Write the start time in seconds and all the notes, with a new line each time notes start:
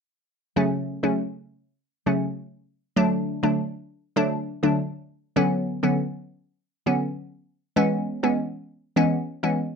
0.56 C#3 F#3 A3 C#4
1.03 C#3 F#3 A3 C#4
2.06 C#3 F#3 A3 C#4
2.96 D3 F#3 A3 D4
3.43 D3 F#3 A3 D4
4.16 D3 F#3 A3 D4
4.63 D3 F#3 A3 D4
5.36 D3 F#3 B3 C#4
5.83 D3 F#3 B3 C#4
6.86 D3 F#3 B3 C#4
7.76 E3 G#3 B3 C#4
8.23 E3 G#3 B3 C#4
8.96 E3 G#3 B3 C#4
9.43 E3 G#3 B3 C#4